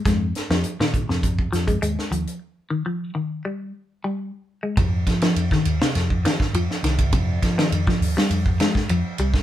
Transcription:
<<
  \new Staff \with { instrumentName = "Clean electric guitar" } { \clef bass \time 4/4 \key f \minor \tempo 4 = 102 aes8 r16 f8 ees8 c8 r16 f16 aes16 aes8 f8 | r8 ees16 f8 ees8 g8 r8 g8 r8 aes16 | r8. f8 ees8 c8 r16 ees8 f8 ees8 | c8 r16 ees8 f8 g8 r16 aes8 f8 g8 | }
  \new Staff \with { instrumentName = "Fingered electric bass" } { \clef bass \time 4/4 \key f \minor f,8 r16 f,16 r16 bes,8 f,8. f,8 ees,16 r16 ees,16 r16 | r1 | f,8 f8 f,16 r16 ees,16 r16 f,8 f16 r16 f,16 r16 c,8 | f,8 f8 f,16 r16 ees,16 r16 f,8 f16 r16 f,16 r16 c,8 | }
  \new DrumStaff \with { instrumentName = "Drums" } \drummode { \time 4/4 <hh bd sn>8 <hh sn>16 sn16 hh16 sn16 <hh bd>16 sn16 <hh bd>16 bd16 <hh sn>16 <hh bd>16 hh16 sn16 hh16 hh16 | r4 r4 r4 r4 | <bd rb>8 <bd rb sn>16 <rb sn>16 rb16 <bd sn>16 rb16 sn16 <rb sn>16 bd16 <rb sn>16 <bd sn>16 rb16 sn16 <rb sn>16 <bd rb>16 | <bd rb>8 <bd rb sn>16 sn16 rb16 <bd sn>16 hho16 sn16 rb16 bd16 <rb sn>16 <bd sn>16 rb8 rb16 <bd sn>16 | }
>>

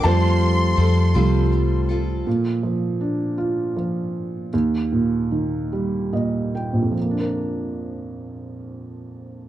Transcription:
<<
  \new Staff \with { instrumentName = "Violin section" } { \time 6/8 \key bes \major \tempo 4. = 52 c'''2~ c'''8 r8 | r2. | r2. | r2. | }
  \new Staff \with { instrumentName = "Steel-string acoustic guitar" } { \time 6/8 \key bes \major <f g c' f' a'>4 <g c' f' a'>8 <f g c' f' a'>4 <c' f' a'>8 | r2. | r2. | r2. | }
  \new Staff \with { instrumentName = "Felt piano" } { \time 6/8 \key bes \major <c'' a''>2 r4 | r2. | r2 ees''8 g''8 | r2. | }
  \new Staff \with { instrumentName = "Felt piano" } { \clef bass \time 6/8 \key bes \major <g a f'>4. <g a f'>8 r4 | bes,8 f8 d'8 f'8 f4 | ees,8 bes,8 ees8 g8 bes,4 | <bes,, f, f bes d' bes'>2. | }
  \new Staff \with { instrumentName = "Fingered electric bass" } { \clef bass \time 6/8 \key bes \major f,4 f,8 c,4. | r2. | r2. | r2. | }
>>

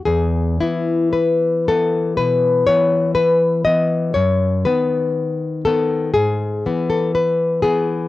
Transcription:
\new Staff \with { instrumentName = "Nylon-string guitar" } { \time 4/4 \key e \major \tempo 4 = 60 << { gis'8 e'8 b'8 a'8 b'8 cis''8 b'8 dis''8 | cis''8 b'4 a'8 gis'8. a'16 b'8 gis'8 | } \\ { e,8 <e b>4 <e b>8 b,8 <e b>4 <e b>8 | fis,8 <dis b>4 <dis b>8 gis,8 <e b>4 <e b>8 | } >> }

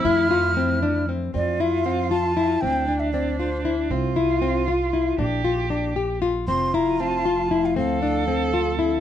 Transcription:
<<
  \new Staff \with { instrumentName = "Flute" } { \time 5/8 \key f \major \tempo 4 = 117 f'''2 r8 | d''8 e''8 f''8 a''4 | g''8. e''16 d''8 c''8. r16 | r2 r8 |
r2 r8 | c'''8 bes''8 a''4~ a''16 f''16 | f''2 r8 | }
  \new Staff \with { instrumentName = "Cello" } { \time 5/8 \key f \major e'2 r8 | f'2~ f'8 | d'2~ d'8 | f'2~ f'8 |
g'2 r8 | f'2~ f'8 | a'2~ a'8 | }
  \new Staff \with { instrumentName = "Nylon-string guitar" } { \time 5/8 \key f \major e'8 f'8 c'8 d'8 c'8 | c'8 e'8 c'8 f'8 e'8 | c'8 d'8 c'8 f'8 e'8 | c'8 e'8 c'8 f'8 e'8 |
d'8 f'8 d'8 g'8 f'8 | c'8 e'8 c'8 f'8 e'8 | c'8 d'8 c'8 f'8 e'8 | }
  \new Staff \with { instrumentName = "Ambient pad" } { \time 5/8 \key f \major << { f2~ f8 | r2 r8 | r2 r8 | r2 r8 |
r2 r8 | f''2~ f''8~ | f''2~ f''8 | } \\ { <a e'>2~ <a e'>8 | r2 r8 | r2 r8 | r2 r8 |
r2 r8 | <f a>2~ <f a>8 | <d c'>2~ <d c'>8 | } >> }
  \new Staff \with { instrumentName = "Upright bass" } { \clef bass \time 5/8 \key f \major f,2~ f,8 | f,2~ f,8 | d,2~ d,8 | c,2~ c,8 |
bes,,2~ bes,,8 | f,,2~ f,,8 | d,2~ d,8 | }
>>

